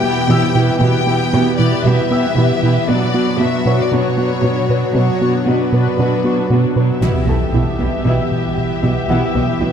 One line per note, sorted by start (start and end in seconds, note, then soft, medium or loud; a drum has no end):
0.00 0.21 B2 medium
0.00 2.89 E3 medium
0.00 4.95 B3 medium
0.00 0.19 B3 medium
0.00 2.88 G4 medium
0.00 4.95 B4 medium
0.00 0.78 G5 medium
0.00 0.52 D6 soft
0.04 0.29 E3 soft
0.04 0.20 B3 medium
0.04 0.28 B3 soft
0.04 0.28 E4 soft
0.04 0.27 G4 soft
0.29 0.73 B2 medium
0.29 0.45 B2 medium
0.29 0.45 E3 medium
0.29 0.53 E3 soft
0.29 0.54 B3 soft
0.29 0.54 E4 soft
0.29 0.53 G4 soft
0.29 1.82 E6 soft
0.54 0.71 B2 medium
0.54 0.81 E3 soft
0.54 0.80 B3 soft
0.54 0.79 E4 soft
0.54 0.71 E4 medium
0.54 0.79 G4 soft
0.80 1.25 B2 medium
0.80 0.97 B2 medium
0.80 0.97 E3 medium
0.80 1.06 E3 medium
0.80 1.06 B3 soft
0.80 1.05 E4 soft
0.80 1.06 G4 soft
0.80 1.57 G5 medium
1.07 1.32 E3 soft
1.07 1.32 B3 soft
1.07 1.23 B3 medium
1.07 1.32 E4 soft
1.07 1.32 G4 soft
1.33 1.77 B2 medium
1.33 1.58 E3 soft
1.33 1.58 B3 soft
1.33 1.49 B3 medium
1.33 1.57 E4 soft
1.33 1.57 G4 soft
1.58 1.75 B2 medium
1.58 1.83 E3 soft
1.58 1.75 E3 medium
1.58 1.83 B3 soft
1.58 1.83 E4 soft
1.58 1.83 G4 soft
1.58 1.84 D5 medium
1.84 2.28 B2 medium
1.84 2.01 B2 soft
1.84 2.10 E3 soft
1.84 2.01 G3 medium
1.84 2.10 B3 soft
1.84 2.09 E4 soft
1.84 2.09 G4 soft
1.84 2.88 E5 medium
2.10 2.36 E3 soft
2.10 2.26 B3 medium
2.10 2.27 B3 medium
2.10 2.36 B3 soft
2.10 2.35 E4 soft
2.10 2.35 G4 soft
2.10 3.63 E6 soft
2.36 2.52 B2 medium
2.36 2.80 B2 medium
2.36 2.61 E3 soft
2.36 2.53 E3 medium
2.36 2.61 B3 soft
2.36 2.60 E4 soft
2.36 2.59 G4 soft
2.61 2.79 B2 medium
2.61 2.88 E3 soft
2.61 2.88 B3 soft
2.61 2.87 E4 soft
2.61 2.79 E4 medium
2.61 2.87 G4 soft
2.87 3.32 B2 medium
2.87 3.04 B2 medium
2.87 7.02 F#3 medium
2.87 3.13 F#3 soft
2.87 3.12 B3 soft
2.87 3.04 B3 medium
2.87 3.12 D4 soft
2.87 3.12 F#4 soft
2.87 7.03 F#4 medium
2.87 3.40 D5 medium
3.13 3.38 F#3 soft
3.13 3.38 B3 soft
3.13 3.30 B3 medium
3.13 3.37 D4 soft
3.13 3.38 F#4 soft
3.13 3.30 F#4 medium
3.38 3.84 B2 medium
3.38 3.63 F#3 soft
3.38 3.63 B3 soft
3.38 3.55 B3 soft
3.38 3.63 D4 soft
3.38 3.63 F#4 soft
3.38 3.56 F#4 soft
3.38 3.79 E5 medium
3.64 3.81 B2 medium
3.64 3.90 F#3 soft
3.64 3.90 B3 soft
3.64 3.82 B3 medium
3.64 3.88 D4 soft
3.64 3.88 F#4 soft
3.64 5.18 C#5 soft
3.64 5.18 C#6 soft
3.81 3.93 D5 medium
3.89 4.07 B2 soft
3.89 4.35 B2 medium
3.89 4.16 F#3 soft
3.89 4.16 B3 soft
3.89 4.16 D4 soft
3.89 4.08 D4 medium
3.89 4.16 F#4 soft
3.89 4.93 C#5 medium
4.17 4.42 F#3 soft
4.17 4.42 B3 soft
4.17 4.33 B3 medium
4.17 4.41 D4 soft
4.17 4.42 F#4 soft
4.17 4.34 F#4 medium
4.42 4.59 B2 medium
4.42 4.87 B2 soft
4.42 4.68 F#3 soft
4.42 4.68 B3 soft
4.42 4.60 B3 medium
4.42 4.68 D4 soft
4.42 4.68 F#4 soft
4.69 4.85 B2 soft
4.69 4.94 F#3 soft
4.69 4.94 B3 soft
4.69 4.94 D4 soft
4.69 4.94 F#4 soft
4.69 4.86 B4 soft
4.95 5.11 B2 medium
4.95 5.39 B2 medium
4.95 5.20 F#3 soft
4.95 5.20 B3 soft
4.95 5.12 B3 medium
4.95 6.99 B3 medium
4.95 5.21 D4 soft
4.95 7.03 D4 medium
4.95 5.21 F#4 soft
4.95 5.46 C#5 medium
5.21 5.45 F#3 soft
5.21 5.46 B3 soft
5.21 5.37 B3 medium
5.21 5.46 D4 soft
5.21 5.46 F#4 soft
5.21 5.37 F#4 medium
5.46 5.91 B2 medium
5.46 5.72 F#3 soft
5.46 5.62 B3 soft
5.46 5.72 B3 soft
5.46 5.72 D4 soft
5.46 5.72 F#4 soft
5.46 5.63 F#4 medium
5.46 6.77 B4 soft
5.73 5.88 B2 medium
5.73 5.98 F#3 soft
5.73 5.98 B3 soft
5.73 5.89 B3 medium
5.73 5.99 D4 soft
5.73 5.98 F#4 soft
5.99 6.42 B2 medium
5.99 6.15 B2 soft
5.99 6.24 F#3 soft
5.99 6.24 B3 soft
5.99 6.15 D4 soft
5.99 6.23 D4 soft
5.99 6.24 F#4 soft
6.24 6.50 F#3 soft
6.24 6.40 B3 soft
6.24 6.50 B3 soft
6.24 6.49 D4 soft
6.24 6.49 F#4 soft
6.24 6.40 F#4 medium
6.24 6.99 C#6 soft
6.50 6.66 B2 medium
6.50 6.94 B2 soft
6.50 6.76 F#3 soft
6.50 6.66 B3 medium
6.50 6.76 B3 soft
6.50 6.75 D4 soft
6.50 6.75 F#4 soft
6.76 6.92 B2 soft
6.76 7.02 F#3 soft
6.76 7.01 B3 soft
6.76 7.02 D4 soft
6.76 7.02 F#4 soft
6.76 6.92 B4 soft
7.01 7.11 B1 soft
7.01 7.17 B2 medium
7.01 7.10 B2 soft
7.01 9.72 E3 soft
7.01 7.18 E3 medium
7.01 7.26 B3 soft
7.01 9.72 B3 soft
7.01 7.26 E4 soft
7.01 9.72 G4 soft
7.01 9.72 E5 soft
7.01 impact soft
7.27 7.37 B1 soft
7.27 7.36 B2 soft
7.27 7.43 B3 soft
7.27 7.36 B3 soft
7.27 7.44 B3 soft
7.27 7.36 E4 soft
7.27 8.80 A4 soft
7.27 8.80 A5 soft
7.53 7.63 B1 soft
7.53 7.69 B2 soft
7.53 7.61 B2 soft
7.53 7.62 B3 soft
7.53 7.70 E4 soft
7.53 7.63 E4 soft
7.79 7.89 B1 soft
7.79 7.87 B2 soft
7.79 7.95 B3 soft
7.79 7.88 B3 soft
7.79 7.96 B3 soft
7.79 7.88 E4 soft
8.05 8.14 B1 soft
8.05 8.13 B2 soft
8.05 8.21 B2 medium
8.05 8.22 E3 medium
8.05 8.30 B3 soft
8.05 8.30 E4 soft
8.31 8.47 B2 soft
8.58 8.73 B2 soft
8.83 8.92 B1 soft
8.83 8.91 B2 soft
8.83 8.99 B2 soft
8.83 8.99 G3 soft
8.83 8.91 B3 soft
8.83 8.91 E4 soft
9.09 9.18 B1 soft
9.09 9.25 B2 medium
9.09 9.17 B2 soft
9.09 9.25 E3 medium
9.09 9.34 B3 soft
9.09 9.33 E4 soft
9.09 9.72 F#5 soft
9.35 9.43 B1 soft
9.35 9.43 B2 soft
9.35 9.43 B3 soft
9.35 9.51 B3 medium
9.35 9.51 B3 soft
9.35 9.43 E4 soft
9.60 9.69 B1 soft
9.60 9.72 B2 soft
9.60 9.69 B2 soft
9.60 9.69 B3 soft
9.60 9.68 E4 soft
9.60 9.72 E4 soft